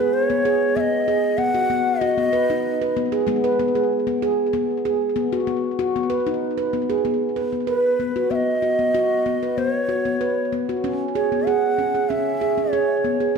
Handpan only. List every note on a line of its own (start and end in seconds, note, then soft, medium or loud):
0.00 1.34 G#3 medium
0.00 0.29 G#4 medium
0.30 0.45 B3 medium
0.45 0.76 G#4 medium
0.77 1.08 B3 medium
1.08 1.39 G#4 medium
1.38 1.69 B3 medium
1.54 1.70 F#4 medium
1.70 2.01 B3 medium
2.01 2.18 F#4 medium
2.18 2.33 B3 medium
2.33 2.49 B4 medium
2.50 2.81 D#4 medium
2.82 2.96 B4 medium
2.97 3.12 B3 medium
3.12 3.27 G#4 medium
3.27 5.12 G#3 medium
3.27 3.44 B3 medium
3.44 3.59 B4 medium
3.59 3.75 B3 medium
3.75 4.06 G#4 medium
4.07 4.22 B3 medium
4.22 4.53 G#4 medium
4.53 4.84 B3 medium
4.85 5.16 G#4 medium
5.16 5.46 B3 medium
5.32 5.47 F#4 medium
5.47 5.79 B3 medium
5.79 5.95 F#4 medium
5.96 6.11 B3 medium
6.10 6.26 B4 medium
6.27 6.58 D#4 medium
6.58 6.73 B4 medium
6.73 6.90 B3 medium
6.90 7.05 G#4 medium
7.05 7.36 B3 medium
7.36 7.53 B4 medium
7.53 7.68 B3 soft
7.67 7.99 B4 medium
8.00 8.16 B3 medium
8.16 8.31 F#4 medium
8.31 8.62 B3 medium
8.62 8.79 F#4 medium
8.79 8.94 B3 medium
8.94 9.26 F#4 medium
9.26 9.42 B3 medium
9.43 9.58 B4 medium
9.58 9.89 B3 medium
9.89 10.05 F#4 medium
10.05 10.21 B3 medium
10.21 10.52 B4 medium
10.53 10.69 B3 medium
10.69 10.84 F#4 medium
10.84 11.15 C#4 medium
11.15 11.32 G#4 medium
11.32 11.47 B3 medium
11.47 11.78 G#4 medium
11.79 11.95 C#4 medium
11.95 12.10 G#4 soft
12.10 12.42 C#4 medium
12.41 12.58 G#4 medium
12.58 12.73 C#4 medium
12.73 13.04 G#4 medium
13.04 13.21 B3 medium
13.20 13.36 G#4 soft